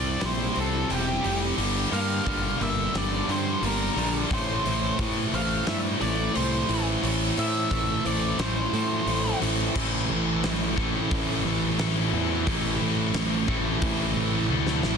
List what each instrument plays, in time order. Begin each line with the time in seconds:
Already playing: picked electric bass C2, distorted electric guitar C3 G3 C4, steel-string acoustic guitar C3 C4 E4, lead electric guitar D5
0.20 picked electric bass A#1, distorted electric guitar C3 G3 C4, steel-string acoustic guitar G4, snare, open hi-hat
0.25 lead electric guitar C5
0.55 picked electric bass C2, distorted electric guitar C3 G3 C4, steel-string acoustic guitar C4, open hi-hat
0.60 lead electric guitar A4
0.87 picked electric bass E1, distorted electric guitar C3 G3 C4, steel-string acoustic guitar E4, lead electric guitar G4, open hi-hat
1.23 picked electric bass F1, distorted electric guitar C3 G3 C4, steel-string acoustic guitar G4, open hi-hat
1.57 picked electric bass G1, distorted electric guitar G2 D3 G3, steel-string acoustic guitar G2, open hi-hat
1.91 distorted electric guitar G2 D3 G3, picked electric bass G2, steel-string acoustic guitar A#3, lead electric guitar F5, open hi-hat
2.24 picked electric bass G1, distorted electric guitar G2 D3 G3, steel-string acoustic guitar G3, kick, open hi-hat
2.59 picked electric bass G1, distorted electric guitar G2 D3 G3, steel-string acoustic guitar A#3, open hi-hat
2.63 lead electric guitar E5
2.92 picked electric bass G1, distorted electric guitar G2 D3 G3, steel-string acoustic guitar D4, snare, open hi-hat
2.98 lead electric guitar D5
3.26 distorted electric guitar G2 D3 G3, picked electric bass G2, steel-string acoustic guitar G3, open hi-hat
3.30 lead electric guitar C5
3.60 picked electric bass G1, distorted electric guitar G2 D3 G3, steel-string acoustic guitar A#3, open hi-hat
3.64 distorted electric guitar D3, lead electric guitar A#4
3.93 picked electric bass A#1, distorted electric guitar G2 D3 G3
3.97 distorted electric guitar G2 D3 G3, steel-string acoustic guitar D4, open hi-hat
4.26 distorted electric guitar A2 E3 A3
4.31 picked electric bass A1, steel-string acoustic guitar A2, distorted electric guitar A2 E3 A3, lead electric guitar C5, kick, open hi-hat
4.62 picked electric bass A1, distorted electric guitar A2 E3 A3, steel-string acoustic guitar C4, open hi-hat
4.67 distorted electric guitar A2 E3 A3
4.97 distorted electric guitar A2 E3 A3, picked electric bass A2, steel-string acoustic guitar A3, kick, open hi-hat
5.31 picked electric bass A1, distorted electric guitar A2 E3 A3, steel-string acoustic guitar C4, open hi-hat
5.35 lead electric guitar F5
5.65 picked electric bass G2, distorted electric guitar A2 E3 A3, steel-string acoustic guitar E4, lead electric guitar E5, snare, open hi-hat
5.99 picked electric bass A1, distorted electric guitar A2 E3 A3, steel-string acoustic guitar A3, lead electric guitar D5, open hi-hat
6.33 picked electric bass C2, distorted electric guitar A2 E3 A3, steel-string acoustic guitar C4, lead electric guitar C5, open hi-hat
6.69 picked electric bass A1, distorted electric guitar A2 E3 A3, steel-string acoustic guitar E4, open hi-hat
7.02 picked electric bass A1, distorted electric guitar A2 E3 A3, steel-string acoustic guitar A2, open hi-hat
7.36 distorted electric guitar A2 E3 A3, picked electric bass A2, steel-string acoustic guitar C4, lead electric guitar E5, open hi-hat
7.71 picked electric bass A1, distorted electric guitar A2 E3 A3, steel-string acoustic guitar A3, kick, open hi-hat
8.05 picked electric bass A1, distorted electric guitar A2 E3 A3, steel-string acoustic guitar C4, lead electric guitar D5, open hi-hat
8.38 picked electric bass A1, distorted electric guitar A2 E3 A3, steel-string acoustic guitar E4, lead electric guitar C5, snare, open hi-hat
8.72 distorted electric guitar A2 E3 A3, picked electric bass A2, steel-string acoustic guitar A3, open hi-hat
9.06 picked electric bass A1, distorted electric guitar A2 E3 A3, steel-string acoustic guitar C4, open hi-hat
9.42 picked electric bass A1, distorted electric guitar A2 E3 A3, steel-string acoustic guitar E4, open hi-hat
9.74 picked electric bass A1, distorted electric guitar A2 E3 A3 C4 E4 A4, kick, crash
9.79 distorted electric guitar A3
10.10 picked electric bass A1
10.43 picked electric bass A1, snare, open hi-hat
10.76 picked electric bass A1, distorted electric guitar A2 E3 A3 C4 E4 A4, kick, snare
11.11 picked electric bass A1, kick, open hi-hat
11.45 picked electric bass A1
11.78 picked electric bass A1, distorted electric guitar A2 E3 A3 C4 E4 A4, snare, open hi-hat
12.13 picked electric bass E2
12.45 picked electric bass A1, distorted electric guitar A2 E3 A3 C4 E4 A4, kick, open hi-hat
12.81 picked electric bass A1
13.14 picked electric bass A1, snare, open hi-hat
13.48 picked electric bass A1, distorted electric guitar A2 E3 A3 C4 E4 A4, kick
13.82 picked electric bass A1, kick, open hi-hat
14.16 picked electric bass A1
14.49 picked electric bass D2, distorted electric guitar A2 E3 A3 C4 E4 A4, high tom
14.67 snare
14.83 picked electric bass A1, snare